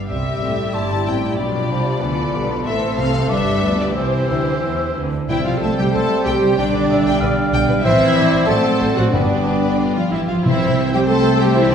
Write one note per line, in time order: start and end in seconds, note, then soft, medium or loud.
0.08 0.40 C2 soft
0.08 0.40 C3 soft
0.08 1.34 G3 soft
0.08 1.35 G3 soft
0.08 0.70 C4 soft
0.08 1.36 G4 soft
0.08 0.44 G4 soft
0.08 0.73 E5 medium
0.08 0.75 E6 soft
0.41 0.74 A1 soft
0.41 0.74 A2 soft
0.41 0.53 G3 soft
0.41 0.53 C4 soft
0.41 0.75 A4 soft
0.74 1.07 G1 soft
0.74 1.07 G2 soft
0.74 1.37 E4 soft
0.74 2.01 G4 soft
0.74 1.06 A5 medium
0.74 1.37 C6 soft
1.06 1.39 A1 soft
1.06 1.39 A2 soft
1.06 1.18 G3 soft
1.06 1.18 C4 soft
1.06 1.39 G5 medium
1.37 1.70 B1 soft
1.37 1.70 B2 soft
1.37 2.64 F3 soft
1.37 1.70 G3 soft
1.37 2.03 D4 soft
1.37 2.02 G4 soft
1.37 2.32 D5 soft
1.37 2.00 B5 soft
1.69 2.02 C2 soft
1.69 2.02 C3 soft
1.69 2.04 F3 soft
1.69 1.81 G3 soft
1.69 1.81 D4 soft
2.00 2.34 D2 soft
2.00 2.33 D3 soft
2.00 2.36 E3 soft
2.00 2.67 B3 soft
2.00 2.64 A4 soft
2.00 2.65 B4 soft
2.00 2.66 D5 soft
2.00 2.67 B5 soft
2.34 2.66 B1 soft
2.34 2.66 B2 soft
2.34 2.68 D3 soft
2.34 2.46 G3 soft
2.34 2.46 D4 soft
2.65 2.98 A1 soft
2.65 2.98 A2 medium
2.65 3.29 E3 soft
2.65 3.33 A3 medium
2.65 3.30 C4 soft
2.65 3.93 A4 medium
2.65 3.31 A4 soft
2.65 3.28 C5 medium
2.65 2.95 E5 medium
2.65 3.31 C6 soft
2.98 3.30 C2 soft
2.98 3.30 C3 soft
2.98 3.10 E3 medium
2.98 3.10 C4 soft
2.98 3.30 F5 medium
3.29 3.62 G1 soft
3.29 3.61 G2 soft
3.29 3.96 G3 soft
3.29 3.96 G3 medium
3.29 3.96 D4 soft
3.29 3.94 B4 soft
3.29 3.95 B4 soft
3.29 3.79 E5 medium
3.29 3.94 D6 soft
3.62 3.95 D2 soft
3.62 3.74 F3 soft
3.62 3.74 B3 soft
3.81 3.96 D5 medium
3.95 4.29 C2 soft
3.95 4.28 C3 soft
3.95 4.95 E3 soft
3.95 5.08 E3 soft
3.95 5.08 E4 soft
3.95 5.09 G4 soft
3.95 4.94 C5 soft
3.95 4.94 C5 medium
3.95 5.09 C5 soft
3.95 4.94 E6 soft
4.28 4.63 D2 soft
4.28 4.62 D3 soft
4.28 4.40 E3 soft
4.28 4.41 C4 soft
4.63 4.96 E2 soft
4.63 4.96 E3 soft
4.95 5.29 D2 soft
4.95 5.28 D3 soft
4.95 5.08 E3 soft
4.95 5.08 C4 soft
5.29 5.36 C2 soft
5.29 6.22 C3 medium
5.29 5.35 E3 medium
5.29 7.81 G3 soft
5.29 6.54 G3 soft
5.29 6.54 C4 soft
5.29 5.45 E4 medium
5.29 6.54 C5 soft
5.29 5.44 E5 medium
5.29 6.53 G5 soft
5.29 5.44 G5 soft
5.45 5.52 C2 soft
5.45 5.61 F3 soft
5.45 5.62 F4 medium
5.45 5.52 C5 soft
5.45 5.62 F5 medium
5.61 5.68 C2 soft
5.61 5.68 A3 medium
5.61 5.77 A4 medium
5.61 5.69 E5 soft
5.61 5.77 A5 medium
5.77 5.85 C2 medium
5.77 5.94 G3 soft
5.77 5.85 G4 medium
5.77 5.84 G5 medium
5.77 5.93 G5 medium
5.92 6.01 C2 soft
5.92 6.26 A3 medium
5.92 6.25 A4 medium
5.92 6.01 C5 soft
5.92 6.58 C5 medium
5.92 6.25 A5 medium
6.24 6.33 C2 medium
6.24 6.58 G3 medium
6.24 6.58 G4 medium
6.24 6.56 G5 medium
6.24 6.41 G5 medium
6.42 6.49 C2 medium
6.42 6.48 C5 soft
6.56 6.65 B1 medium
6.56 7.53 D3 medium
6.56 7.82 G3 medium
6.56 7.82 D4 medium
6.56 7.53 D4 medium
6.56 7.52 D5 medium
6.56 6.92 D5 medium
6.56 7.82 D5 medium
6.56 6.73 G5 medium
6.56 7.82 G5 medium
6.74 6.80 B1 soft
6.74 6.80 B4 soft
6.91 6.97 B1 medium
6.91 6.97 D5 soft
6.91 7.22 E5 medium
7.06 7.12 B1 medium
7.06 7.21 G5 medium
7.21 7.28 B1 medium
7.21 7.28 B4 medium
7.21 7.84 F5 medium
7.53 7.59 B1 medium
7.53 7.68 G5 medium
7.69 7.75 B1 medium
7.69 7.75 B4 medium
7.82 7.91 A1 medium
7.82 8.44 E3 medium
7.82 8.45 C4 medium
7.82 8.45 E4 medium
7.82 8.44 C5 medium
7.82 8.00 C5 medium
7.82 8.43 E5 medium
7.82 8.49 E5 medium
7.82 8.18 E5 medium
7.86 8.45 E3 medium
7.86 8.45 C4 medium
8.00 8.07 A1 medium
8.00 8.06 E4 soft
8.17 8.23 A1 soft
8.17 8.23 A4 soft
8.17 8.49 D5 medium
8.32 8.39 A1 medium
8.32 8.47 C5 medium
8.46 8.55 A1 soft
8.46 9.14 F#3 medium
8.46 8.95 A3 medium
8.46 9.12 C4 medium
8.46 9.15 C4 medium
8.46 8.55 F#4 soft
8.46 8.97 A4 medium
8.46 9.13 C5 medium
8.46 9.12 D5 medium
8.46 9.14 F#5 medium
8.46 8.95 A5 medium
8.81 8.87 A1 medium
8.81 8.96 C5 medium
8.97 9.04 A1 soft
8.97 9.03 F#3 soft
8.97 9.04 F#4 soft
8.97 9.14 F#4 medium
8.97 9.04 F#5 medium
9.12 9.20 G1 soft
9.12 10.08 G2 medium
9.12 9.94 D3 soft
9.12 10.13 G3 soft
9.12 10.13 B3 soft
9.12 9.94 D4 medium
9.12 10.11 B4 soft
9.12 9.29 B4 soft
9.12 10.10 D5 soft
9.12 9.94 D5 medium
9.12 10.12 G5 soft
9.30 9.37 G1 soft
9.30 9.36 D4 soft
9.45 9.53 G1 soft
9.45 9.52 G4 soft
9.62 9.70 G1 medium
9.62 9.78 B4 medium
9.79 9.86 G1 soft
9.79 10.10 F4 medium
9.95 10.12 F3 soft
9.95 10.02 F4 medium
9.95 10.13 F5 soft
10.11 10.20 G1 soft
10.11 10.29 E3 soft
10.11 10.18 E4 medium
10.11 10.45 G4 soft
10.11 10.20 E5 soft
10.28 10.35 G1 soft
10.28 10.45 F3 soft
10.28 10.44 F4 medium
10.28 10.35 F5 soft
10.45 11.68 C2 medium
10.45 11.37 C3 medium
10.45 10.93 E3 medium
10.45 11.75 G3 medium
10.45 11.75 C4 medium
10.45 11.68 C4 medium
10.45 10.93 E4 medium
10.45 11.68 C5 medium
10.45 11.68 C5 soft
10.45 10.92 E5 medium
10.45 11.75 G5 medium
10.93 11.00 G3 medium
10.93 11.00 G4 medium
10.93 11.00 G5 medium
11.08 11.40 A3 medium
11.08 11.40 A4 medium
11.08 11.68 C5 medium
11.08 11.39 A5 medium
11.40 11.56 G3 medium
11.40 11.56 G4 medium
11.40 11.56 G5 medium
11.55 11.72 E3 medium
11.55 11.72 E4 medium
11.55 11.71 E5 medium
11.71 11.75 D3 medium
11.71 11.75 D4 medium
11.71 11.75 D5 medium